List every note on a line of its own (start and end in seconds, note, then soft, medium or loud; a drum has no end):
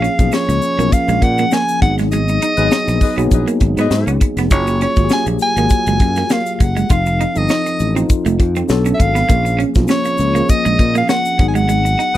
0.00 0.19 F3 medium
0.00 0.20 A#3 medium
0.00 0.20 C#4 medium
0.00 0.12 C#4 medium
0.00 0.10 G#4 medium
0.00 0.35 F5 medium
0.04 closed hi-hat medium
0.19 0.29 B1 medium
0.19 0.66 F3 medium
0.19 0.66 A#3 medium
0.19 0.66 C#4 medium
0.19 0.67 G#4 medium
0.19 kick medium
0.19 closed hi-hat soft
0.19 shaker soft
0.32 0.43 C#4 medium
0.32 0.94 C#5 medium
0.32 snare loud
0.32 shaker medium
0.49 0.59 C#2 medium
0.49 muted clean electric guitar stroke soft
0.49 snare soft
0.49 closed hi-hat medium
0.49 shaker soft
0.62 closed hi-hat medium
0.62 shaker soft
0.78 0.89 B1 medium
0.78 1.74 F3 medium
0.78 1.74 A#3 medium
0.78 0.87 A#3 medium
0.78 1.74 C#4 medium
0.78 1.75 A#4 medium
0.78 closed hi-hat soft
0.78 shaker soft
0.92 1.25 F5 loud
0.92 kick medium
0.92 closed hi-hat medium
0.92 shaker medium
1.08 1.18 A#1 loud
1.08 1.17 G#3 medium
1.08 closed hi-hat medium
1.08 shaker medium
1.22 1.44 A#2 medium
1.22 1.55 F#5 medium
1.22 muted clean electric guitar stroke soft
1.22 kick medium
1.22 closed hi-hat medium
1.38 1.47 A#3 medium
1.38 closed hi-hat soft
1.38 shaker soft
1.51 1.63 A#3 medium
1.51 1.81 G#5 loud
1.51 snare medium
1.51 shaker medium
1.68 closed hi-hat soft
1.68 shaker soft
1.82 2.37 G#1 medium
1.82 2.42 F#3 medium
1.82 2.42 B3 medium
1.82 2.42 D#4 medium
1.82 2.43 G#4 medium
1.82 1.96 F#5 medium
1.82 muted clean electric guitar stroke soft
1.82 kick loud
1.82 closed hi-hat medium
1.98 2.07 G#3 medium
1.98 snare soft
1.98 closed hi-hat soft
1.98 shaker soft
2.12 2.23 G#3 medium
2.12 3.27 D#5 medium
2.12 closed hi-hat medium
2.12 shaker medium
2.28 muted clean electric guitar stroke soft
2.28 closed hi-hat soft
2.28 shaker soft
2.42 2.52 D#4 medium
2.42 closed hi-hat medium
2.57 2.68 G#1 medium
2.57 3.05 F#3 medium
2.57 3.05 B3 medium
2.57 2.66 D#4 medium
2.57 3.05 D#4 medium
2.57 2.67 G#4 medium
2.57 3.05 G#4 medium
2.57 2.67 B4 medium
2.57 2.66 D#5 loud
2.57 closed hi-hat medium
2.57 shaker soft
2.71 2.82 D#4 medium
2.71 snare loud
2.71 shaker medium
2.88 2.98 A#1 medium
2.88 muted clean electric guitar stroke soft
2.88 snare soft
2.88 closed hi-hat soft
2.88 shaker soft
3.01 3.15 D#4 medium
3.01 3.16 G#4 medium
3.01 3.16 B4 medium
3.01 3.15 D#5 medium
3.01 kick medium
3.01 open hi-hat medium
3.01 shaker soft
3.17 3.28 B1 medium
3.17 4.13 F#3 medium
3.17 3.24 A#3 medium
3.17 3.26 B3 medium
3.17 4.13 D#4 medium
3.17 4.14 G#4 medium
3.17 closed hi-hat soft
3.17 shaker soft
3.24 4.17 B3 medium
3.31 3.43 A#1 medium
3.31 3.46 D#4 medium
3.31 3.46 G#4 medium
3.31 3.46 B4 medium
3.31 3.46 D#5 medium
3.31 kick medium
3.31 closed hi-hat medium
3.31 shaker medium
3.47 3.56 A#3 medium
3.47 closed hi-hat medium
3.47 shaker medium
3.60 3.73 G#1 medium
3.60 muted clean electric guitar stroke soft
3.60 kick medium
3.60 closed hi-hat medium
3.77 3.87 G#2 medium
3.77 3.87 B3 medium
3.77 4.15 D#4 medium
3.77 4.15 G#4 medium
3.77 4.15 B4 medium
3.77 4.15 D#5 loud
3.77 snare soft
3.77 closed hi-hat soft
3.77 shaker soft
3.91 4.03 G#2 medium
3.91 snare loud
3.91 shaker medium
4.07 4.17 C#2 medium
4.07 4.16 C#4 medium
4.07 closed hi-hat soft
4.07 shaker soft
4.21 muted clean electric guitar stroke soft
4.21 kick medium
4.21 closed hi-hat medium
4.37 4.51 F1 medium
4.37 4.47 B3 medium
4.37 snare soft
4.37 closed hi-hat soft
4.37 shaker soft
4.51 4.85 F#1 loud
4.51 4.87 F#3 medium
4.51 4.87 A#3 medium
4.51 4.62 D#4 medium
4.51 4.88 F4 medium
4.51 4.88 G#4 medium
4.51 4.79 C#5 medium
4.51 kick loud
4.51 closed hi-hat medium
4.51 shaker medium
4.67 muted clean electric guitar stroke soft
4.67 closed hi-hat soft
4.67 shaker soft
4.81 4.92 C#4 medium
4.81 5.10 C#5 medium
4.81 closed hi-hat medium
4.96 5.07 G#1 medium
4.96 5.44 F#3 medium
4.96 5.44 A#3 medium
4.96 5.44 F4 medium
4.96 5.04 G4 medium
4.96 kick medium
4.96 closed hi-hat medium
4.96 shaker soft
5.04 5.48 G#4 medium
5.09 5.21 C#4 medium
5.09 5.26 G#5 medium
5.09 snare loud
5.09 shaker medium
5.26 5.37 A#1 medium
5.26 muted clean electric guitar stroke soft
5.26 closed hi-hat soft
5.26 shaker soft
5.39 6.34 G#5 loud
5.39 closed hi-hat medium
5.39 shaker soft
5.57 5.67 G#1 medium
5.57 6.52 F#3 medium
5.57 6.53 A#3 medium
5.57 5.66 A#3 medium
5.57 6.53 F4 medium
5.57 6.53 G#4 medium
5.57 closed hi-hat soft
5.57 shaker soft
5.70 kick medium
5.70 closed hi-hat medium
5.70 shaker medium
5.86 5.97 F#1 medium
5.86 5.96 G#3 medium
5.86 closed hi-hat medium
5.86 shaker medium
6.00 6.22 F#2 medium
6.00 muted clean electric guitar stroke soft
6.00 kick medium
6.00 closed hi-hat medium
6.16 6.26 A#3 medium
6.16 snare soft
6.16 closed hi-hat soft
6.16 shaker soft
6.30 6.41 A#3 medium
6.30 6.55 F5 medium
6.30 snare loud
6.30 shaker medium
6.46 closed hi-hat soft
6.46 shaker medium
6.55 6.64 F5 medium
6.60 6.82 F#1 medium
6.60 6.91 F#5 medium
6.60 muted clean electric guitar stroke soft
6.60 kick medium
6.60 closed hi-hat medium
6.76 6.85 G#3 medium
6.76 closed hi-hat soft
6.76 shaker soft
6.89 7.24 F1 medium
6.89 7.26 F3 medium
6.89 7.27 C4 medium
6.89 7.27 D#4 medium
6.89 7.00 F4 medium
6.89 7.27 A4 medium
6.89 7.39 F5 loud
6.89 kick loud
6.89 closed hi-hat medium
6.89 shaker medium
7.06 muted clean electric guitar stroke soft
7.06 closed hi-hat soft
7.06 shaker soft
7.21 7.30 D#4 medium
7.21 closed hi-hat medium
7.35 7.46 G1 medium
7.35 7.83 F3 medium
7.35 7.83 C4 medium
7.35 7.83 D#4 medium
7.35 7.83 A4 medium
7.35 7.97 D#5 medium
7.35 closed hi-hat soft
7.35 shaker soft
7.49 7.60 D#4 medium
7.49 snare loud
7.49 shaker medium
7.66 muted clean electric guitar stroke soft
7.66 snare soft
7.66 closed hi-hat soft
7.66 shaker soft
7.79 8.02 A1 medium
7.79 closed hi-hat medium
7.79 shaker soft
7.95 8.69 F3 medium
7.95 8.69 C4 medium
7.95 8.05 C4 medium
7.95 8.69 D#4 medium
7.95 8.70 F4 medium
7.95 closed hi-hat soft
7.95 shaker soft
8.10 kick medium
8.10 closed hi-hat medium
8.10 shaker medium
8.26 8.36 F1 loud
8.26 8.35 A3 medium
8.26 closed hi-hat medium
8.26 shaker soft
8.40 8.62 F2 loud
8.40 muted clean electric guitar stroke soft
8.40 kick medium
8.40 closed hi-hat medium
8.56 8.65 C4 medium
8.56 closed hi-hat soft
8.56 shaker soft
8.68 8.91 B1 loud
8.68 9.18 F#3 medium
8.68 9.18 B3 medium
8.68 9.18 D4 medium
8.68 9.19 A4 loud
8.68 snare loud
8.68 shaker medium
8.86 8.94 C#4 medium
8.86 closed hi-hat soft
8.86 shaker medium
8.94 9.03 E5 medium
9.00 9.22 G#1 loud
9.00 9.60 F5 loud
9.00 muted clean electric guitar stroke soft
9.00 kick medium
9.00 closed hi-hat medium
9.15 9.24 B3 medium
9.15 snare soft
9.15 closed hi-hat soft
9.15 shaker soft
9.29 9.63 A#1 medium
9.29 9.66 F3 medium
9.29 9.39 A#3 medium
9.29 9.66 A#3 medium
9.29 9.66 C#4 medium
9.29 9.66 G#4 medium
9.29 kick loud
9.29 closed hi-hat medium
9.29 shaker medium
9.45 muted clean electric guitar stroke soft
9.45 closed hi-hat soft
9.45 shaker soft
9.59 9.69 C#4 medium
9.59 closed hi-hat medium
9.75 9.86 B1 medium
9.75 10.23 F3 medium
9.75 10.23 A#3 medium
9.75 9.82 C4 medium
9.75 10.23 F4 medium
9.75 kick medium
9.75 snare soft
9.75 closed hi-hat medium
9.75 shaker soft
9.83 10.26 C#4 medium
9.88 9.99 C#4 medium
9.88 10.51 C#5 medium
9.88 snare loud
9.88 shaker medium
10.05 muted clean electric guitar stroke soft
10.05 closed hi-hat medium
10.05 shaker soft
10.18 10.41 C#2 medium
10.18 closed hi-hat medium
10.18 shaker soft
10.35 11.31 F3 medium
10.35 10.44 A#3 medium
10.35 11.31 A#3 medium
10.35 11.32 C#4 medium
10.35 11.32 G#4 medium
10.35 closed hi-hat soft
10.35 shaker soft
10.49 10.96 D#5 loud
10.49 kick medium
10.49 closed hi-hat medium
10.49 shaker medium
10.65 10.76 A#1 loud
10.65 10.74 G#3 medium
10.65 closed hi-hat medium
10.65 shaker soft
10.79 11.01 A#2 medium
10.79 muted clean electric guitar stroke soft
10.79 kick medium
10.79 closed hi-hat medium
10.95 11.04 A#3 medium
10.95 11.09 F5 medium
10.95 closed hi-hat soft
10.95 shaker soft
11.09 11.19 A#3 medium
11.09 11.45 F#5 loud
11.09 snare loud
11.09 shaker medium
11.25 closed hi-hat soft
11.25 shaker medium
11.39 11.95 G#1 medium
11.39 11.99 F#3 medium
11.39 12.00 B3 medium
11.39 12.00 D#4 medium
11.39 12.00 G#4 medium
11.39 muted clean electric guitar stroke soft
11.39 kick loud
11.39 closed hi-hat medium
11.48 11.57 G#5 medium
11.55 11.64 G#3 medium
11.55 12.17 F#5 loud
11.55 closed hi-hat soft
11.55 shaker soft
11.69 11.79 G#3 medium
11.69 closed hi-hat medium
11.69 shaker medium
11.85 muted clean electric guitar stroke soft
11.85 closed hi-hat soft
11.85 shaker soft
11.99 12.09 D#4 medium
11.99 closed hi-hat medium
12.14 12.17 D#4 medium
12.14 12.17 G#4 medium
12.14 12.17 D#5 loud